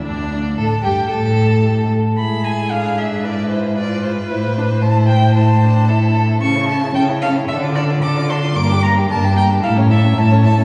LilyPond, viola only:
\new Staff \with { instrumentName = "Viola" } { \time 4/4 \key a \minor \tempo 4 = 112 d'4 a'8 g'8 a'4. r8 | e'4 d'4 e'4 f'4 | e'8 d'8 e'4 e'8 d'8 e'4 | \key a \phrygian cis'16 e'16 cis'16 e'16 cis'16 e'16 cis'16 e'16 d'16 f'16 d'16 f'16 d'16 f'16 d'16 f'16 |
bes16 d'16 bes16 d'16 bes16 d'16 bes16 d'16 e'16 cis'16 e'16 cis'16 e'16 cis'16 e'16 cis'16 | }